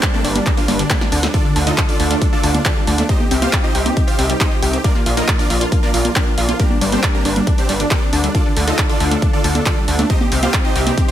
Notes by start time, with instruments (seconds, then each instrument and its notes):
Already playing: analog synth pad G3 A#3 D4
0.03 synth pluck G3, kick, clap, closed hi-hat
0.14 supersaw synth A3 A#3 D4 A4, synth pluck C4
0.24 analog synth bass G1, synth pluck D4, supersaw synth D4, open hi-hat
0.36 synth pluck G3, supersaw synth D4, closed hi-hat, high conga
0.46 synth pluck G3, supersaw synth D4, kick, clap, closed hi-hat
0.57 supersaw synth F3 A#3 D4 F4, synth pluck D4, open hi-hat
0.68 analog synth bass G1, synth pluck G3, supersaw synth D4, open hi-hat, high conga
0.79 synth pluck D3, supersaw synth D4, closed hi-hat
0.90 supersaw synth D3 G3 A#3 D4, kick, snare, clap, closed hi-hat
1.01 synth pluck C4, supersaw synth D4, snare
1.12 analog synth bass D2, synth pluck D4, supersaw synth D4, open hi-hat
1.23 synth pluck G3, supersaw synth D4, snare, closed hi-hat
1.34 analog synth pad D3 D4 F4 A4, synth pluck D3, supersaw synth D4 F4 A4 D5, kick, closed hi-hat
1.45 synth pluck D3, supersaw synth D4
1.56 analog synth bass D2, synth pluck A3, supersaw synth D4, open hi-hat
1.67 synth pluck D3, supersaw synth D#4 F4 A4 D#5, closed hi-hat
1.78 synth pluck D2, supersaw synth D4, kick, clap, closed hi-hat
1.89 synth pluck D4, supersaw synth D4 F4 A4 D5, open hi-hat
2.00 analog synth bass D2, synth pluck A3, supersaw synth D4, open hi-hat
2.11 synth pluck A3, supersaw synth D4, closed hi-hat
2.22 synth pluck D3, supersaw synth D4, kick, closed hi-hat
2.33 synth pluck D3, supersaw synth D4 F4 A4 D5
2.43 analog synth bass D2, synth pluck A3, supersaw synth D4, open hi-hat
2.54 synth pluck D3, supersaw synth D4, closed hi-hat, high conga
2.65 supersaw synth D4 F4 A4 D5, kick, clap, closed hi-hat
2.76 synth pluck G3, supersaw synth D4
2.87 analog synth bass D2, synth pluck A3, supersaw synth D4, open hi-hat
2.98 synth pluck A3, supersaw synth D4, closed hi-hat, high conga
3.09 analog synth pad C3 C4 D#4 G4, synth pluck C4, supersaw synth D#4 G4 C5 D#5, kick, closed hi-hat
3.20 synth pluck G4, supersaw synth G4, high conga
3.31 analog synth bass C2, synth pluck C4, supersaw synth G4, open hi-hat
3.42 synth pluck C4, supersaw synth F4 G4 C5 F5, closed hi-hat, high conga
3.53 supersaw synth G4, kick, clap, closed hi-hat
3.64 supersaw synth D#4 G4 C5 D#5, synth pluck F4
3.75 analog synth bass C2, supersaw synth G4, synth pluck G4, open hi-hat
3.86 synth pluck C4, supersaw synth G4, closed hi-hat, high conga
3.96 synth pluck C4, supersaw synth G4, kick, closed hi-hat
4.07 supersaw synth F4 G4 C5 F5, synth pluck G4, open hi-hat
4.18 analog synth bass C2, synth pluck C4, supersaw synth G4, open hi-hat
4.29 synth pluck G3, supersaw synth G4, closed hi-hat
4.40 synth pluck C4, supersaw synth D#4 G4 C5 D#5, kick, clap, closed hi-hat
4.51 synth pluck F4, supersaw synth G4
4.62 analog synth bass C2, supersaw synth G4, synth pluck G4, open hi-hat
4.73 synth pluck C4, supersaw synth G4, closed hi-hat
4.84 analog synth pad F3 A#3 D4, synth pluck A#3, supersaw synth D4 F4 A#4 D5, kick, closed hi-hat
4.95 synth pluck A#3, supersaw synth F4
5.06 analog synth bass A#1, synth pluck F4, supersaw synth F4, open hi-hat
5.17 synth pluck A#3, supersaw synth D#4 F4 A#4 D#5, closed hi-hat
5.28 synth pluck A#2, kick, clap, closed hi-hat
5.39 supersaw synth D4 F4 A#4 D5, synth pluck A#4, open hi-hat
5.50 analog synth bass A#1, supersaw synth F4, synth pluck F4, open hi-hat
5.61 supersaw synth F4, synth pluck F4, closed hi-hat
5.72 synth pluck A#3, supersaw synth F4, kick, closed hi-hat
5.83 synth pluck A#3, supersaw synth D4 F4 A#4 D5
5.94 analog synth bass A#1, supersaw synth F4, synth pluck F4, open hi-hat
6.05 synth pluck A#3, supersaw synth F4, closed hi-hat, high conga
6.16 synth pluck A#3, supersaw synth D4 F4 A#4 D5, kick, clap, closed hi-hat
6.27 synth pluck D4, supersaw synth F4
6.38 analog synth bass A#1, synth pluck F4, supersaw synth F4, open hi-hat
6.49 synth pluck F4, supersaw synth F4, closed hi-hat, high conga
6.59 analog synth pad G3, synth pluck G3, supersaw synth A#3 D4 G4 A#4, kick, closed hi-hat
6.70 synth pluck D4, supersaw synth D4, high conga
6.81 analog synth bass G1, synth pluck G3, supersaw synth D4, open hi-hat
6.92 synth pluck G3, supersaw synth C4 D4 G4 C5, closed hi-hat, high conga
7.03 synth pluck G3, supersaw synth D4, kick, clap, closed hi-hat
7.14 supersaw synth A#3 D4 G4 A#4, synth pluck C4
7.25 analog synth bass G1, supersaw synth D4, synth pluck D4, open hi-hat
7.36 synth pluck G3, supersaw synth D4, closed hi-hat, high conga
7.47 synth pluck G3, supersaw synth D4, kick, closed hi-hat
7.58 supersaw synth C4 D4 G4 C5, synth pluck D4, open hi-hat
7.69 analog synth bass G1, synth pluck G3, supersaw synth D4, open hi-hat
7.80 synth pluck D3, supersaw synth D4, closed hi-hat
7.91 synth pluck G3, supersaw synth D4 G4 A#4 D5, kick, clap, closed hi-hat
8.02 synth pluck C4, supersaw synth D4
8.13 analog synth bass D2, synth pluck D4, supersaw synth D4, open hi-hat
8.24 synth pluck G3, supersaw synth D4, closed hi-hat
8.35 analog synth pad D3 F4 A4, synth pluck D3, supersaw synth D4 F4 A4 D5, kick, closed hi-hat
8.46 synth pluck D3, supersaw synth D4
8.57 analog synth bass D2, synth pluck A3, supersaw synth D4, open hi-hat
8.67 synth pluck D3, supersaw synth D#4 F4 A4 D#5, closed hi-hat
8.78 synth pluck D2, supersaw synth D4, kick, clap, closed hi-hat
8.89 supersaw synth D4 F4 A4 D5, synth pluck D4, open hi-hat
9.00 analog synth bass D2, synth pluck A3, supersaw synth D4, open hi-hat
9.11 synth pluck A3, supersaw synth D4, closed hi-hat
9.22 synth pluck D3, supersaw synth D4, kick, closed hi-hat
9.33 synth pluck D3, supersaw synth D4 F4 A4 D5
9.44 analog synth bass D2, synth pluck A3, supersaw synth D4, open hi-hat
9.55 synth pluck D3, supersaw synth D4, closed hi-hat, high conga
9.66 synth pluck D3, supersaw synth D4 F4 A4 D5, kick, clap, closed hi-hat
9.77 synth pluck G3, supersaw synth D4
9.88 analog synth bass D2, synth pluck A3, supersaw synth D4, open hi-hat
9.99 synth pluck A3, supersaw synth D4, closed hi-hat, high conga
10.10 analog synth pad C3 C4 D#4 G4, synth pluck C4, supersaw synth D#4 G4 C5 D#5, kick, closed hi-hat
10.21 synth pluck G4, supersaw synth G4, high conga
10.32 analog synth bass C2, synth pluck C4, supersaw synth G4, open hi-hat
10.43 synth pluck C4, supersaw synth F4 G4 C5 F5, closed hi-hat, high conga
10.54 synth pluck C4, supersaw synth G4, kick, clap, closed hi-hat
10.65 supersaw synth D#4 G4 C5 D#5, synth pluck F4
10.75 analog synth bass C2, supersaw synth G4, synth pluck G4, open hi-hat
10.87 synth pluck C4, supersaw synth G4, closed hi-hat, high conga
10.98 synth pluck C4, supersaw synth G4, kick, closed hi-hat
11.08 supersaw synth C5